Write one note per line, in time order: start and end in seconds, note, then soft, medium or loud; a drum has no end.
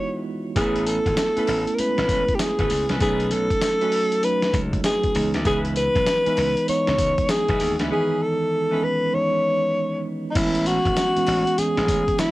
0.00 0.57 E3 medium
0.00 0.58 G#3 medium
0.00 0.56 B3 medium
0.00 0.58 D#4 medium
0.00 0.57 E4 medium
0.00 0.57 F4 medium
0.00 0.42 F#4 medium
0.00 0.22 C#5 loud
0.56 0.98 A1 loud
0.56 1.20 A3 medium
0.56 1.20 B3 medium
0.56 0.85 C#4 medium
0.56 1.21 C#4 medium
0.56 1.21 E4 medium
0.56 0.85 G#4 medium
0.56 0.89 G#4 medium
0.56 0.85 A4 medium
0.56 0.85 B4 loud
0.56 kick loud
0.56 closed hi-hat medium
0.56 tambourine medium
0.76 closed hi-hat medium
0.86 1.76 A4 loud
0.86 closed hi-hat medium
0.86 tambourine medium
1.06 1.15 G#1 loud
1.06 kick medium
1.06 closed hi-hat medium
1.17 snare loud
1.17 clap medium
1.17 closed hi-hat medium
1.17 tambourine medium
1.36 1.73 A3 medium
1.36 1.73 B3 medium
1.36 1.49 C#4 medium
1.36 1.73 C#4 medium
1.36 1.73 E4 medium
1.36 1.50 G#4 medium
1.36 1.50 A4 medium
1.36 1.50 B4 medium
1.36 muted slap bass stroke soft
1.36 closed hi-hat soft
1.47 1.64 A1 medium
1.47 clap medium
1.47 open hi-hat medium
1.67 closed hi-hat medium
1.74 1.81 A#4 medium
1.78 2.83 G#3 medium
1.78 2.83 B3 medium
1.78 2.83 C#4 medium
1.78 2.83 E4 medium
1.78 2.36 B4 loud
1.78 muted slap bass stroke soft
1.78 closed hi-hat medium
1.78 tambourine medium
1.98 2.24 A1 loud
1.98 snare medium
1.98 closed hi-hat soft
2.09 kick loud
2.09 closed hi-hat loud
2.09 tambourine medium
2.28 kick medium
2.28 closed hi-hat medium
2.35 2.42 G4 medium
2.39 2.90 G#4 medium
2.39 snare loud
2.39 clap medium
2.39 closed hi-hat medium
2.39 tambourine loud
2.59 2.69 G#1 medium
2.59 2.72 C#4 medium
2.59 2.72 G#4 medium
2.59 2.72 A4 medium
2.59 2.72 B4 medium
2.59 kick loud
2.59 closed hi-hat medium
2.70 2.87 C#2 loud
2.70 open hi-hat medium
2.70 tambourine medium
2.89 2.99 C2 medium
2.89 2.99 C#4 medium
2.89 3.03 G#4 medium
2.89 2.99 A4 medium
2.89 3.00 B4 medium
2.89 snare medium
2.89 closed hi-hat soft
3.00 3.26 B1 loud
3.00 3.65 F#3 medium
3.00 3.65 A3 medium
3.00 3.29 C#4 medium
3.00 3.65 C#4 medium
3.00 3.30 D#4 medium
3.00 3.66 D#4 medium
3.00 3.33 G#4 medium
3.00 3.30 A4 medium
3.00 3.30 B4 loud
3.00 kick loud
3.00 closed hi-hat medium
3.00 tambourine medium
3.20 closed hi-hat medium
3.31 3.48 B1 loud
3.31 4.26 A4 loud
3.31 closed hi-hat medium
3.31 tambourine medium
3.51 kick loud
3.51 closed hi-hat medium
3.61 snare loud
3.61 clap medium
3.61 closed hi-hat loud
3.61 tambourine medium
3.81 4.17 F#3 medium
3.81 4.18 A3 medium
3.81 3.94 C#4 medium
3.81 4.18 C#4 medium
3.81 3.94 D#4 medium
3.81 4.18 F#4 medium
3.81 3.94 A4 medium
3.81 3.94 B4 medium
3.81 closed hi-hat soft
3.92 open hi-hat medium
4.12 closed hi-hat medium
4.23 5.15 F#3 medium
4.23 5.15 A3 medium
4.23 5.15 C#4 medium
4.23 5.15 D#4 medium
4.23 4.59 B4 loud
4.23 closed hi-hat medium
4.23 tambourine medium
4.42 snare medium
4.42 closed hi-hat soft
4.53 4.79 C#2 medium
4.53 kick loud
4.53 closed hi-hat loud
4.53 tambourine medium
4.73 kick medium
4.73 closed hi-hat medium
4.84 5.31 G#4 loud
4.84 snare loud
4.84 clap medium
4.84 closed hi-hat medium
4.84 tambourine loud
5.04 kick loud
5.04 closed hi-hat medium
5.15 5.32 C#2 loud
5.15 6.05 E3 medium
5.15 6.05 G#3 medium
5.15 6.05 B3 medium
5.15 6.05 D#4 medium
5.15 open hi-hat medium
5.15 tambourine medium
5.34 5.44 D2 loud
5.34 snare medium
5.34 closed hi-hat medium
5.45 5.88 C#2 loud
5.45 5.74 C#4 medium
5.45 5.74 D#4 medium
5.45 5.74 E4 medium
5.45 5.60 G#4 loud
5.45 5.74 B4 loud
5.45 kick loud
5.45 closed hi-hat medium
5.45 tambourine medium
5.65 closed hi-hat medium
5.76 6.64 B4 loud
5.76 closed hi-hat medium
5.76 tambourine medium
5.96 6.05 B1 loud
5.96 kick loud
5.96 closed hi-hat medium
6.07 snare loud
6.07 clap medium
6.07 closed hi-hat loud
6.07 tambourine medium
6.26 6.62 E3 medium
6.26 6.63 G#3 medium
6.26 6.63 B3 medium
6.26 6.39 C#4 medium
6.26 6.39 D#4 medium
6.26 6.63 D#4 medium
6.26 6.39 E4 medium
6.26 6.39 B4 medium
6.26 muted slap bass stroke soft
6.26 closed hi-hat soft
6.37 6.54 C#2 medium
6.37 clap medium
6.37 open hi-hat medium
6.57 closed hi-hat medium
6.68 7.73 E3 medium
6.68 7.73 G#3 medium
6.68 7.73 B3 medium
6.68 7.73 D#4 medium
6.68 7.32 C#5 loud
6.68 muted slap bass stroke medium
6.68 closed hi-hat medium
6.68 tambourine medium
6.87 7.13 C#2 loud
6.87 snare medium
6.87 closed hi-hat medium
6.98 kick loud
6.98 closed hi-hat medium
6.98 tambourine medium
7.18 kick medium
7.18 closed hi-hat medium
7.29 7.80 G#4 loud
7.29 snare loud
7.29 clap medium
7.29 closed hi-hat medium
7.29 tambourine loud
7.48 7.58 B1 medium
7.48 7.61 C#4 medium
7.48 7.62 D#4 medium
7.48 7.62 E4 medium
7.48 7.62 B4 medium
7.48 kick loud
7.48 closed hi-hat medium
7.60 7.76 D#2 medium
7.60 open hi-hat medium
7.60 tambourine medium
7.79 7.89 D2 loud
7.79 7.89 C#4 medium
7.79 7.89 D#4 medium
7.79 7.90 E4 medium
7.79 7.90 B4 medium
7.79 snare medium
7.79 closed hi-hat soft
7.90 8.55 D#3 medium
7.90 8.55 E3 medium
7.90 8.55 B3 medium
7.90 8.19 C#4 medium
7.90 8.19 D#4 medium
7.90 8.55 D#4 medium
7.90 8.19 E4 medium
7.90 8.24 G#4 loud
7.90 8.20 B4 loud
8.22 8.85 A4 loud
8.71 9.07 E3 medium
8.71 9.08 G#3 medium
8.71 9.08 B3 medium
8.71 8.84 C#4 medium
8.71 9.08 C#4 medium
8.71 8.84 D#4 medium
8.71 8.84 E4 medium
8.71 8.84 B4 medium
8.84 9.16 B4 loud
9.13 10.17 E3 medium
9.13 10.18 G#3 medium
9.13 10.18 B3 medium
9.13 10.18 D#4 medium
9.13 10.05 C#5 loud
10.31 10.37 D#4 medium
10.35 10.78 A1 loud
10.35 11.00 E3 medium
10.35 11.00 G#3 medium
10.35 11.00 B3 medium
10.35 11.00 C#4 medium
10.35 10.68 E4 medium
10.35 kick loud
10.35 closed hi-hat medium
10.35 crash loud
10.35 tambourine medium
10.55 closed hi-hat medium
10.66 11.60 F#4 loud
10.66 closed hi-hat medium
10.66 tambourine medium
10.85 10.95 G#1 loud
10.85 kick loud
10.85 closed hi-hat medium
10.96 snare loud
10.96 clap medium
10.96 closed hi-hat medium
10.96 tambourine medium
11.16 11.52 E3 medium
11.16 11.53 G#3 medium
11.16 11.53 B3 medium
11.16 11.53 C#4 medium
11.16 muted slap bass stroke soft
11.16 closed hi-hat soft
11.27 11.44 A1 medium
11.27 clap medium
11.27 open hi-hat medium
11.47 closed hi-hat medium
11.58 12.31 E3 medium
11.58 12.31 G#3 medium
11.58 12.31 B3 medium
11.58 12.31 C#4 medium
11.58 12.21 G#4 loud
11.58 muted slap bass stroke soft
11.58 closed hi-hat medium
11.58 tambourine medium
11.77 12.03 A1 loud
11.77 snare medium
11.77 closed hi-hat soft
11.88 kick loud
11.88 closed hi-hat loud
11.88 tambourine medium
12.08 kick medium
12.08 closed hi-hat medium
12.19 12.31 E4 loud
12.19 snare loud
12.19 clap medium
12.19 closed hi-hat medium
12.19 tambourine loud